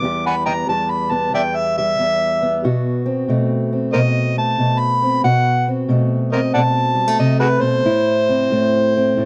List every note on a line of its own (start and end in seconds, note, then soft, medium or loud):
0.00 0.67 E2 medium
0.00 0.68 G3 medium
0.00 0.46 B3 medium
0.00 0.23 D6 medium
0.04 2.62 G4 medium
0.26 0.35 F#5 medium
0.26 0.35 G#5 medium
0.26 0.45 B5 medium
0.46 1.11 B3 medium
0.46 0.53 D#5 medium
0.46 0.52 G5 medium
0.46 0.68 A#5 medium
0.68 1.32 E2 medium
0.68 1.77 G3 medium
0.68 0.92 A5 medium
0.90 1.13 B5 medium
1.11 2.42 B3 medium
1.11 1.33 A5 medium
1.33 1.98 E2 medium
1.33 1.42 D5 medium
1.33 1.42 E5 medium
1.33 1.58 G5 medium
1.56 1.77 E5 medium
1.78 2.65 G3 medium
1.78 2.62 E5 loud
1.99 2.64 E2 medium
2.42 3.05 B3 medium
2.64 3.28 B2 medium
2.64 5.22 F#4 medium
3.06 3.72 C4 medium
3.28 3.94 B2 medium
3.28 4.37 A3 medium
3.73 5.02 C4 soft
3.93 4.57 B2 medium
3.93 4.00 A#4 medium
3.93 3.99 C5 medium
3.93 4.36 D#5 medium
4.37 5.27 A3 medium
4.37 4.81 A5 medium
4.58 5.22 B2 medium
4.79 5.22 B5 medium
5.02 5.27 C4 medium
5.24 5.87 B2 medium
5.24 7.82 F#4 medium
5.24 5.66 F#5 loud
5.68 6.32 C4 medium
5.89 6.54 B2 medium
5.89 6.94 A3 medium
6.33 7.82 C4 medium
6.33 6.41 A#4 medium
6.33 6.39 C5 medium
6.33 6.53 D#5 medium
6.54 7.19 B2 medium
6.54 6.60 D5 medium
6.54 6.62 F#5 medium
6.54 7.18 A5 medium
6.95 7.08 G3 medium
7.08 7.84 A3 medium
7.19 7.61 C3 medium
7.19 7.39 D#5 medium
7.40 7.47 F#4 medium
7.40 7.47 G#4 medium
7.40 7.62 B4 loud
7.61 7.84 B2 medium
7.61 9.25 C5 loud
7.85 8.50 A2 medium
7.85 9.25 E4 medium
8.29 8.94 C4 medium
8.52 9.16 A2 medium
8.52 9.25 A3 medium
8.97 9.25 C4 medium
9.17 9.25 A2 medium